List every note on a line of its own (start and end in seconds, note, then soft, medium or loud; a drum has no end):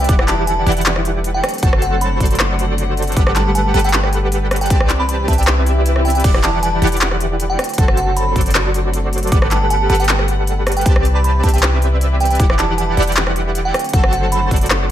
0.00 1.41 E3 medium
0.00 1.40 G3 medium
0.00 1.41 E4 loud
0.00 1.40 B4 medium
0.04 closed hi-hat medium
0.09 0.65 E1 loud
0.09 4.66 D3 medium
0.09 0.64 E3 loud
0.09 0.64 E4 medium
0.09 0.64 G4 medium
0.09 0.64 D5 medium
0.09 0.64 F#5 loud
0.09 0.15 D6 medium
0.09 kick loud
0.09 closed hi-hat medium
0.19 0.25 D6 medium
0.19 cross-stick medium
0.28 0.41 A5 medium
0.28 clap medium
0.28 closed hi-hat medium
0.47 0.60 A5 medium
0.47 closed hi-hat medium
0.66 1.41 E1 loud
0.66 1.42 E3 medium
0.66 1.42 E4 medium
0.66 1.42 G4 medium
0.66 1.42 D5 medium
0.66 1.42 F#5 loud
0.66 closed hi-hat soft
0.72 closed hi-hat medium
0.77 closed hi-hat soft
0.81 closed hi-hat medium
0.86 clap loud
0.86 closed hi-hat medium
0.96 cross-stick medium
1.05 closed hi-hat medium
1.24 closed hi-hat medium
1.34 1.48 G5 medium
1.43 3.15 F#3 medium
1.43 4.67 A3 medium
1.43 3.15 C4 medium
1.43 4.67 F#5 medium
1.43 cross-stick medium
1.43 closed hi-hat soft
1.49 closed hi-hat medium
1.54 closed hi-hat soft
1.58 closed hi-hat medium
1.63 2.19 F#1 loud
1.63 2.18 F#3 loud
1.63 2.18 F#4 medium
1.63 2.18 A4 medium
1.63 2.18 C5 medium
1.63 1.76 F#5 medium
1.63 2.18 A5 loud
1.63 kick loud
1.63 closed hi-hat medium
1.73 cross-stick medium
1.82 1.95 F#5 medium
1.82 closed hi-hat medium
2.01 2.55 B5 medium
2.01 closed hi-hat medium
2.20 3.15 F#1 loud
2.20 3.14 F#3 medium
2.20 3.14 F#4 medium
2.20 3.14 A4 medium
2.20 3.14 C5 medium
2.20 3.14 D5 medium
2.20 kick medium
2.20 closed hi-hat soft
2.25 closed hi-hat medium
2.31 closed hi-hat soft
2.35 closed hi-hat medium
2.40 cross-stick medium
2.40 clap loud
2.40 closed hi-hat medium
2.59 closed hi-hat medium
2.78 closed hi-hat medium
2.97 closed hi-hat medium
3.02 closed hi-hat medium
3.07 closed hi-hat soft
3.12 closed hi-hat medium
3.16 3.72 G1 loud
3.16 7.55 G3 medium
3.16 3.72 G3 loud
3.16 3.72 G4 medium
3.16 3.72 A4 medium
3.16 7.55 B4 medium
3.16 3.72 B4 medium
3.16 3.72 F#5 loud
3.16 3.23 D6 medium
3.16 kick loud
3.16 closed hi-hat medium
3.27 3.33 D6 medium
3.27 cross-stick medium
3.36 3.49 A5 medium
3.36 clap medium
3.36 closed hi-hat medium
3.55 3.68 A5 medium
3.55 closed hi-hat medium
3.74 4.72 G1 loud
3.74 4.68 G3 medium
3.74 4.68 G4 medium
3.74 4.68 A4 medium
3.74 4.68 B4 medium
3.74 4.68 F#5 loud
3.74 3.82 A5 medium
3.74 closed hi-hat medium
3.79 closed hi-hat medium
3.84 3.97 G5 loud
3.84 closed hi-hat soft
3.89 closed hi-hat medium
3.93 clap loud
3.93 closed hi-hat medium
4.04 cross-stick medium
4.13 closed hi-hat medium
4.32 closed hi-hat medium
4.51 cross-stick medium
4.51 closed hi-hat medium
4.56 closed hi-hat medium
4.61 4.67 G5 medium
4.61 closed hi-hat medium
4.66 closed hi-hat medium
4.70 5.26 C2 loud
4.70 6.23 C3 medium
4.70 7.56 E3 medium
4.70 5.26 C4 loud
4.70 7.56 E4 loud
4.70 5.26 G4 medium
4.70 5.26 B4 medium
4.70 5.26 D5 medium
4.70 5.26 A5 loud
4.70 kick loud
4.70 closed hi-hat medium
4.80 cross-stick medium
4.90 clap medium
4.90 closed hi-hat medium
5.00 5.06 B5 medium
5.09 5.15 B5 medium
5.09 closed hi-hat medium
5.28 6.22 C2 loud
5.28 6.22 C4 medium
5.28 6.22 G4 medium
5.28 6.22 B4 medium
5.28 6.22 D5 medium
5.28 6.22 E5 medium
5.28 5.36 A5 medium
5.28 kick medium
5.28 closed hi-hat medium
5.33 closed hi-hat medium
5.38 5.51 G5 medium
5.38 closed hi-hat medium
5.43 closed hi-hat medium
5.47 cross-stick medium
5.47 clap loud
5.47 closed hi-hat medium
5.47 swell medium
5.66 closed hi-hat medium
5.86 closed hi-hat medium
5.96 cross-stick medium
6.05 6.12 G5 medium
6.05 open hi-hat medium
6.10 closed hi-hat medium
6.15 6.21 G5 medium
6.15 closed hi-hat medium
6.20 closed hi-hat medium
6.24 6.80 E1 loud
6.24 10.82 D3 medium
6.24 6.80 E3 loud
6.24 6.80 E4 medium
6.24 6.80 G4 medium
6.24 6.80 D5 medium
6.24 6.80 F#5 loud
6.24 6.31 D6 medium
6.24 kick loud
6.24 closed hi-hat medium
6.24 crash medium
6.34 6.40 D6 medium
6.34 cross-stick medium
6.43 6.57 A5 medium
6.43 clap medium
6.43 closed hi-hat medium
6.63 6.76 A5 medium
6.63 closed hi-hat medium
6.82 7.56 E1 loud
6.82 7.58 E3 medium
6.82 7.58 E4 medium
6.82 7.58 G4 medium
6.82 7.58 D5 medium
6.82 7.58 F#5 loud
6.82 closed hi-hat medium
6.87 closed hi-hat medium
6.92 closed hi-hat medium
6.97 closed hi-hat medium
7.01 clap loud
7.01 closed hi-hat medium
7.11 cross-stick medium
7.20 closed hi-hat medium
7.40 closed hi-hat medium
7.50 7.63 G5 medium
7.59 9.30 F#3 medium
7.59 10.83 A3 medium
7.59 9.30 C4 medium
7.59 9.30 F#4 medium
7.59 cross-stick medium
7.59 closed hi-hat medium
7.64 closed hi-hat medium
7.69 closed hi-hat medium
7.74 closed hi-hat medium
7.78 8.34 F#1 loud
7.78 8.34 F#3 loud
7.78 8.34 F#4 medium
7.78 8.34 A4 medium
7.78 8.34 C5 medium
7.78 7.91 F#5 medium
7.78 8.34 A5 loud
7.78 kick loud
7.78 closed hi-hat medium
7.88 cross-stick medium
7.97 8.11 F#5 medium
7.97 closed hi-hat medium
8.17 8.71 B5 medium
8.17 closed hi-hat medium
8.36 9.30 F#1 loud
8.36 9.30 F#3 medium
8.36 9.30 F#4 medium
8.36 9.30 A4 medium
8.36 9.30 C5 medium
8.36 9.30 D5 medium
8.36 kick medium
8.36 closed hi-hat soft
8.41 closed hi-hat medium
8.46 closed hi-hat soft
8.50 closed hi-hat medium
8.55 cross-stick medium
8.55 clap loud
8.55 closed hi-hat medium
8.74 closed hi-hat medium
8.93 closed hi-hat medium
9.13 closed hi-hat medium
9.18 closed hi-hat medium
9.23 closed hi-hat soft
9.27 closed hi-hat medium
9.32 9.88 G1 loud
9.32 9.87 G3 loud
9.32 13.70 G3 medium
9.32 10.84 B3 medium
9.32 9.87 G4 medium
9.32 9.87 A4 medium
9.32 9.88 B4 medium
9.32 10.84 F#5 loud
9.32 9.88 F#5 loud
9.32 9.38 D6 medium
9.32 kick loud
9.32 closed hi-hat medium
9.42 9.48 D6 medium
9.42 cross-stick medium
9.51 9.64 A5 medium
9.51 clap medium
9.51 closed hi-hat medium
9.70 9.84 A5 loud
9.70 closed hi-hat medium
9.90 10.84 G1 loud
9.90 10.84 G3 medium
9.90 10.84 G4 medium
9.90 10.84 A4 medium
9.90 10.84 B4 medium
9.90 10.84 F#5 loud
9.90 9.98 A5 medium
9.90 closed hi-hat soft
9.95 closed hi-hat medium
10.00 10.12 G5 loud
10.00 closed hi-hat soft
10.04 closed hi-hat medium
10.09 clap loud
10.09 closed hi-hat medium
10.19 cross-stick medium
10.28 closed hi-hat medium
10.47 closed hi-hat medium
10.67 cross-stick medium
10.67 closed hi-hat soft
10.72 closed hi-hat medium
10.77 10.83 G5 medium
10.77 closed hi-hat medium
10.81 closed hi-hat medium
10.86 11.42 C2 medium
10.86 12.38 C3 medium
10.86 13.71 E3 medium
10.86 11.41 C4 loud
10.86 13.71 E4 loud
10.86 11.41 G4 medium
10.86 13.71 B4 medium
10.86 11.41 B4 medium
10.86 11.41 D5 medium
10.86 10.92 G5 medium
10.86 11.41 A5 loud
10.86 kick loud
10.86 closed hi-hat medium
10.96 cross-stick medium
11.05 closed hi-hat medium
11.15 11.21 B5 medium
11.24 11.31 B5 medium
11.24 closed hi-hat medium
11.43 12.38 C2 loud
11.43 12.37 C4 medium
11.43 12.37 G4 medium
11.43 12.37 B4 medium
11.43 12.37 D5 medium
11.43 12.37 E5 medium
11.43 11.52 A5 medium
11.43 kick medium
11.43 closed hi-hat soft
11.49 closed hi-hat medium
11.54 11.66 G5 medium
11.54 closed hi-hat soft
11.58 closed hi-hat medium
11.63 cross-stick medium
11.63 clap loud
11.63 closed hi-hat medium
11.82 closed hi-hat medium
12.01 closed hi-hat medium
12.20 12.27 G5 medium
12.20 closed hi-hat soft
12.25 closed hi-hat medium
12.31 12.36 G5 medium
12.31 closed hi-hat soft
12.35 closed hi-hat medium
12.40 12.95 E1 loud
12.40 14.91 D3 medium
12.40 12.95 E3 loud
12.40 12.95 E4 medium
12.40 12.95 G4 medium
12.40 12.95 D5 medium
12.40 12.95 F#5 loud
12.40 12.46 D6 medium
12.40 kick loud
12.40 closed hi-hat medium
12.50 12.56 D6 medium
12.50 cross-stick medium
12.59 12.72 A5 medium
12.59 clap medium
12.59 closed hi-hat medium
12.78 12.91 A5 medium
12.78 closed hi-hat medium
12.97 13.71 E1 loud
12.97 13.73 E3 medium
12.97 13.73 E4 medium
12.97 13.73 G4 medium
12.97 13.73 D5 medium
12.97 13.73 F#5 loud
12.97 closed hi-hat soft
13.02 closed hi-hat medium
13.07 closed hi-hat soft
13.12 closed hi-hat medium
13.17 clap loud
13.17 closed hi-hat medium
13.27 cross-stick medium
13.36 closed hi-hat medium
13.55 closed hi-hat medium
13.65 13.78 G5 loud
13.74 14.91 F#3 medium
13.74 14.91 A3 medium
13.74 14.91 C4 medium
13.74 14.91 F#5 medium
13.74 cross-stick medium
13.74 closed hi-hat soft
13.79 closed hi-hat medium
13.84 closed hi-hat soft
13.89 closed hi-hat medium
13.93 14.49 F#1 loud
13.93 14.49 F#3 medium
13.93 14.49 F#4 medium
13.93 14.49 A4 medium
13.93 14.49 C5 medium
13.93 14.07 F#5 loud
13.93 14.49 A5 loud
13.93 kick loud
13.93 closed hi-hat medium
14.04 cross-stick medium
14.13 14.26 F#5 medium
14.13 closed hi-hat medium
14.32 14.86 B5 medium
14.32 closed hi-hat medium
14.51 14.91 F#1 loud
14.51 14.91 F#3 medium
14.51 14.91 F#4 medium
14.51 14.91 A4 medium
14.51 14.91 C5 medium
14.51 14.91 D5 medium
14.51 kick medium
14.51 closed hi-hat soft
14.56 closed hi-hat medium
14.61 closed hi-hat soft
14.66 closed hi-hat medium
14.70 cross-stick medium
14.70 clap loud
14.70 closed hi-hat medium